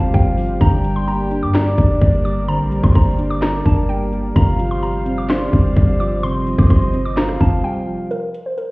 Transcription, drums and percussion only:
0.14 kick, closed hi-hat
0.37 closed hi-hat, open hi-hat
0.49 closed hi-hat
0.61 kick, closed hi-hat
0.84 closed hi-hat
1.08 closed hi-hat
1.31 closed hi-hat
1.54 snare, clap, closed hi-hat
1.78 kick, closed hi-hat
2.01 kick, closed hi-hat
2.25 closed hi-hat
2.48 closed hi-hat
2.72 closed hi-hat
2.83 kick
2.95 kick, closed hi-hat
3.03 closed hi-hat
3.11 closed hi-hat
3.19 closed hi-hat
3.42 snare, clap, closed hi-hat
3.66 kick, closed hi-hat
3.89 closed hi-hat
4.13 closed hi-hat
4.36 kick, closed hi-hat
4.59 closed hi-hat
4.83 closed hi-hat
5.06 closed hi-hat
5.29 snare, clap, closed hi-hat
5.53 kick, closed hi-hat
5.77 kick, closed hi-hat
6.00 closed hi-hat
6.23 closed hi-hat
6.47 closed hi-hat
6.58 kick, cross-stick
6.70 kick, closed hi-hat
6.82 closed hi-hat
6.94 closed hi-hat
7.17 snare, clap, closed hi-hat
7.29 cross-stick
7.41 kick, closed hi-hat
8.11 closed hi-hat
8.34 closed hi-hat
8.58 closed hi-hat

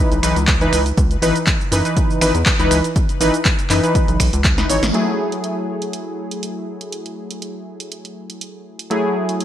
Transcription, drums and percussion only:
0.12 closed hi-hat, shaker
0.23 finger snap, open hi-hat, shaker
0.36 closed hi-hat, shaker
0.47 kick, clap, closed hi-hat, shaker
0.61 closed hi-hat, shaker
0.73 finger snap, open hi-hat, shaker
0.86 closed hi-hat, shaker
0.97 kick, closed hi-hat, shaker
1.11 closed hi-hat, shaker
1.22 open hi-hat, shaker
1.36 closed hi-hat, shaker
1.47 kick, clap, closed hi-hat, shaker
1.61 shaker
1.72 open hi-hat, shaker
1.85 closed hi-hat, shaker
1.97 kick, closed hi-hat, shaker
2.10 shaker
2.21 finger snap, open hi-hat, shaker
2.35 closed hi-hat, shaker
2.46 kick, clap, closed hi-hat, shaker
2.59 closed hi-hat, shaker
2.71 finger snap, open hi-hat, shaker
2.84 closed hi-hat, shaker
2.96 kick, closed hi-hat, shaker
3.09 closed hi-hat, shaker
3.21 open hi-hat, shaker
3.34 closed hi-hat, shaker
3.45 kick, clap, closed hi-hat, shaker
3.59 closed hi-hat, shaker
3.70 clap, open hi-hat, shaker
3.83 closed hi-hat, shaker
3.95 kick, closed hi-hat, shaker
4.08 closed hi-hat, shaker
4.20 finger snap, kick, open hi-hat, shaker
4.33 closed hi-hat, shaker
4.44 kick, clap, closed hi-hat, shaker
4.58 snare, closed hi-hat, shaker
4.70 open hi-hat, shaker
4.83 snare, closed hi-hat, shaker
4.94 closed hi-hat
5.32 closed hi-hat
5.44 closed hi-hat
5.82 closed hi-hat
5.93 closed hi-hat
6.31 closed hi-hat
6.43 closed hi-hat
6.81 closed hi-hat
6.92 closed hi-hat
7.06 closed hi-hat
7.31 closed hi-hat
7.42 closed hi-hat
7.80 closed hi-hat
7.92 closed hi-hat
8.05 closed hi-hat
8.30 closed hi-hat
8.41 closed hi-hat
8.79 closed hi-hat
8.91 closed hi-hat
9.29 closed hi-hat
9.40 closed hi-hat

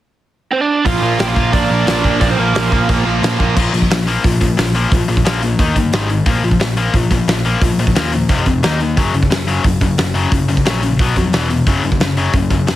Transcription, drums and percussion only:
0.86 kick, open hi-hat
1.19 snare, open hi-hat
1.36 kick
1.53 kick, open hi-hat
1.87 snare, open hi-hat
2.04 kick
2.21 kick, open hi-hat
2.55 snare, open hi-hat
2.72 kick
2.89 kick, open hi-hat
3.23 snare, open hi-hat
3.40 kick
3.57 kick, crash
3.74 open hi-hat
3.82 kick
3.90 snare, open hi-hat
4.08 open hi-hat
4.24 kick, open hi-hat
4.41 kick, open hi-hat
4.58 snare, open hi-hat
4.75 open hi-hat
4.92 kick, open hi-hat
5.09 open hi-hat
5.17 kick
5.25 snare, open hi-hat
5.43 open hi-hat
5.59 kick, open hi-hat
5.76 kick, open hi-hat
5.93 snare, open hi-hat
6.10 open hi-hat
6.26 kick, open hi-hat
6.43 open hi-hat
6.51 kick
6.60 snare, open hi-hat
6.77 open hi-hat
6.94 kick, open hi-hat
7.11 kick, open hi-hat
7.28 snare, open hi-hat
7.45 open hi-hat
7.62 kick, open hi-hat
7.79 open hi-hat
7.87 kick
7.95 snare, open hi-hat
8.12 open hi-hat
8.29 kick, open hi-hat
8.46 kick, open hi-hat
8.63 snare, open hi-hat
8.80 open hi-hat
8.97 kick, open hi-hat
9.14 open hi-hat
9.23 kick
9.31 snare, open hi-hat
9.48 open hi-hat
9.64 kick, open hi-hat
9.81 kick, open hi-hat
9.98 snare, open hi-hat
10.15 open hi-hat
10.32 kick, open hi-hat
10.49 open hi-hat
10.57 kick
10.66 snare, open hi-hat
10.83 open hi-hat
10.99 kick, open hi-hat
11.16 kick, open hi-hat
11.33 snare, open hi-hat
11.50 open hi-hat
11.67 kick, open hi-hat
11.83 open hi-hat
11.92 kick
12.00 snare, open hi-hat
12.17 open hi-hat
12.33 kick, open hi-hat
12.50 kick, open hi-hat
12.67 snare, open hi-hat

